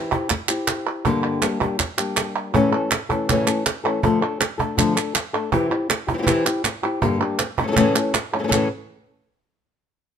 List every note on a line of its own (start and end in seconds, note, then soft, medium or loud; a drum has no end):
0.00 0.11 E3 medium
0.00 0.11 C4 medium
0.00 0.12 E4 medium
0.00 0.10 G4 medium
0.12 0.29 C4 medium
0.12 0.30 E4 medium
0.12 0.30 G4 medium
0.12 cajon bass medium
0.12 clap medium
0.30 muted nylon-string guitar stroke medium
0.30 cajon bass loud
0.30 cajon slap soft
0.30 clap medium
0.48 1.05 C4 medium
0.48 1.04 E4 medium
0.48 1.04 G4 medium
0.48 cajon slap soft
0.48 clap loud
0.68 cajon slap loud
0.68 clap loud
0.87 clap medium
1.05 1.42 G2 medium
1.05 1.42 D3 loud
1.05 1.41 G3 medium
1.05 1.41 A#3 medium
1.05 1.42 D4 loud
1.05 1.43 G4 loud
1.05 cajon bass loud
1.24 cajon slap soft
1.42 1.60 G3 medium
1.42 1.60 A#3 medium
1.42 1.60 D4 medium
1.42 1.60 G4 medium
1.42 cajon slap loud
1.42 clap medium
1.61 1.78 G3 medium
1.61 1.79 A#3 medium
1.61 1.79 D4 medium
1.61 1.79 G4 medium
1.61 cajon bass medium
1.61 clap medium
1.79 muted nylon-string guitar stroke medium
1.79 cajon bass loud
1.79 cajon slap soft
1.79 clap medium
1.98 2.54 G3 soft
1.98 2.54 A#3 medium
1.98 2.54 D4 medium
1.98 2.53 G4 medium
1.98 cajon slap soft
1.98 clap loud
2.17 cajon slap loud
2.17 clap loud
2.53 2.72 A2 medium
2.53 2.72 C#3 medium
2.53 2.72 E3 loud
2.53 2.72 A3 medium
2.53 2.72 C#4 loud
2.53 2.71 A4 loud
2.53 cajon bass loud
2.72 2.90 E3 medium
2.72 2.90 A3 medium
2.72 2.91 C#4 medium
2.72 2.90 A4 medium
2.72 cajon slap soft
2.91 muted nylon-string guitar stroke medium
2.91 cajon slap loud
2.91 clap loud
3.09 3.29 E3 medium
3.09 3.29 A3 medium
3.09 3.28 C#4 medium
3.09 3.28 A4 medium
3.09 cajon bass medium
3.09 clap medium
3.29 3.47 A2 medium
3.29 3.47 C#3 medium
3.29 3.47 E3 medium
3.29 3.48 A3 loud
3.29 3.47 C#4 medium
3.29 3.46 A4 loud
3.29 cajon bass loud
3.29 clap medium
3.47 3.65 E3 medium
3.47 3.65 A3 medium
3.47 3.65 C#4 medium
3.47 3.65 A4 medium
3.47 cajon slap soft
3.47 clap loud
3.66 muted nylon-string guitar stroke medium
3.66 cajon slap loud
3.66 clap loud
3.84 4.03 E3 medium
3.84 4.02 A3 medium
3.84 4.03 C#4 medium
3.84 4.02 A4 medium
3.84 clap medium
4.03 4.21 D3 medium
4.03 4.21 F3 medium
4.03 4.21 A3 medium
4.03 4.21 D4 medium
4.03 4.20 A4 loud
4.03 cajon bass loud
4.21 4.39 A3 medium
4.21 4.39 D4 medium
4.21 4.40 A4 medium
4.40 muted nylon-string guitar stroke medium
4.40 cajon slap loud
4.40 clap medium
4.58 4.77 A3 medium
4.58 4.77 D4 medium
4.58 4.77 A4 medium
4.58 cajon bass medium
4.58 clap medium
4.77 4.95 D3 medium
4.77 4.96 F3 medium
4.77 4.96 A3 medium
4.77 4.96 D4 loud
4.77 4.95 A4 loud
4.77 cajon bass loud
4.77 clap loud
4.96 5.14 A3 medium
4.96 5.14 D4 medium
4.96 5.14 A4 medium
4.96 clap medium
5.15 muted nylon-string guitar stroke medium
5.15 cajon slap loud
5.15 clap loud
5.33 5.53 A3 medium
5.33 5.52 D4 medium
5.33 5.52 A4 medium
5.33 clap medium
5.52 5.70 C3 medium
5.52 5.70 E3 medium
5.52 5.71 C4 medium
5.52 5.70 E4 medium
5.52 5.69 G4 loud
5.52 cajon bass loud
5.70 5.89 C4 medium
5.70 5.89 E4 medium
5.70 5.88 G4 medium
5.70 cajon slap soft
5.89 muted nylon-string guitar stroke medium
5.89 cajon slap loud
5.89 clap loud
6.07 6.13 C4 medium
6.07 6.13 E4 medium
6.07 6.13 G4 medium
6.07 cajon bass medium
6.07 clap medium
6.14 6.17 E3 medium
6.14 6.17 C4 medium
6.14 6.18 E4 medium
6.14 6.18 G4 medium
6.18 6.21 E3 medium
6.18 6.22 C4 medium
6.18 6.22 E4 medium
6.18 6.23 G4 medium
6.23 6.26 E3 medium
6.23 6.26 C4 medium
6.23 6.27 E4 medium
6.23 6.27 G4 medium
6.27 6.45 C3 medium
6.27 6.45 E3 loud
6.27 6.45 C4 loud
6.27 6.46 E4 loud
6.27 6.44 G4 loud
6.27 cajon bass loud
6.27 clap medium
6.45 6.63 C4 medium
6.45 6.63 E4 medium
6.45 6.64 G4 medium
6.45 clap loud
6.64 muted nylon-string guitar stroke medium
6.64 cajon slap loud
6.64 clap loud
6.83 7.02 C4 medium
6.83 7.02 E4 medium
6.83 7.01 G4 medium
6.83 clap medium
7.01 7.20 G2 medium
7.01 7.20 D3 medium
7.01 7.20 G3 medium
7.01 7.20 A#3 loud
7.01 7.20 D4 medium
7.01 7.19 G4 loud
7.01 cajon bass loud
7.20 7.39 G3 medium
7.20 7.39 A#3 medium
7.20 7.39 D4 medium
7.20 7.38 G4 medium
7.39 muted nylon-string guitar stroke medium
7.39 cajon slap loud
7.39 clap medium
7.58 7.63 G3 medium
7.58 7.63 A#3 medium
7.58 7.63 D4 medium
7.58 7.63 G4 medium
7.58 cajon bass medium
7.63 7.66 C#3 medium
7.63 7.66 E3 medium
7.63 7.67 A3 medium
7.63 7.67 C#4 medium
7.63 7.67 A4 medium
7.68 7.70 C#3 medium
7.68 7.76 C#3 medium
7.68 7.71 E3 medium
7.68 7.71 A3 medium
7.68 7.72 C#4 medium
7.68 7.72 A4 medium
7.72 7.75 E3 medium
7.72 7.76 A3 medium
7.72 7.76 C#4 medium
7.72 7.76 A4 loud
7.76 7.95 A2 loud
7.76 7.95 C#3 loud
7.76 7.95 E3 medium
7.76 7.95 A3 loud
7.76 7.95 C#4 loud
7.76 7.94 A4 loud
7.76 cajon bass loud
7.76 clap medium
7.95 8.14 E3 soft
7.95 8.14 A3 medium
7.95 8.14 C#4 medium
7.95 8.13 A4 medium
7.95 cajon slap soft
7.95 clap loud
8.14 muted nylon-string guitar stroke medium
8.14 cajon slap loud
8.14 clap medium
8.33 8.38 E3 soft
8.33 8.38 A3 medium
8.33 8.39 C#4 medium
8.33 8.39 A4 medium
8.33 clap medium
8.39 8.42 C#3 medium
8.39 8.43 E3 medium
8.39 8.43 A3 medium
8.39 8.43 C#4 medium
8.39 8.43 A4 medium
8.43 8.47 C#3 medium
8.43 8.47 E3 medium
8.43 8.47 A3 medium
8.43 8.48 C#4 medium
8.43 8.48 A4 medium
8.48 8.51 C#3 medium
8.48 8.52 E3 medium
8.48 8.52 A3 medium
8.48 8.52 C#4 medium
8.48 8.52 A4 loud
8.48 cajon bass loud
8.52 8.67 A2 medium
8.52 8.67 C#3 loud
8.52 8.67 E3 medium
8.52 8.67 A3 medium
8.52 8.67 C#4 loud
8.52 8.67 A4 loud
8.52 clap loud